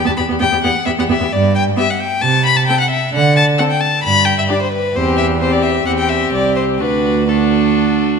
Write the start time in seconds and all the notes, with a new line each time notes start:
0.05 E2 B3 A5
0.09 G4
0.17 E2 B3 G4 B5
0.28 E2 B3 G4
0.40 E2 B3 G4 G5
0.52 E2 B3 G4
0.64 E2 B3 G4 F#5
0.86 E2 B3 G4 E5
0.98 E2 B3 G4 F#5
1.09 E2 B3 G4 E5
1.21 E2 B3 G4
1.32 G2 D5
1.55 G5
1.76 B3 G4 E5
1.90 F#5
2.00 G5
2.22 C3 A5
2.45 B5
2.57 A5
2.67 C4 A4 G5
2.80 F#5
2.91 E5
3.13 D3 F#5
3.37 A5
3.58 C4 A4 F#5
3.70 G5
3.80 A5
4.04 G2 B5
4.25 G5
4.38 E5
4.49 D4 G4 D5
4.62 C5
4.72 B4
4.94 E2 C4 G4 C5
5.18 E5
5.41 C4 G4 C5
5.52 D5
5.63 E5
5.86 E2 C4 G4 F#5
5.99 G5
6.09 E5
6.33 C2 D5
6.56 C5
6.79 D2 D4 F#4 B4
7.28 D4 F#4 A4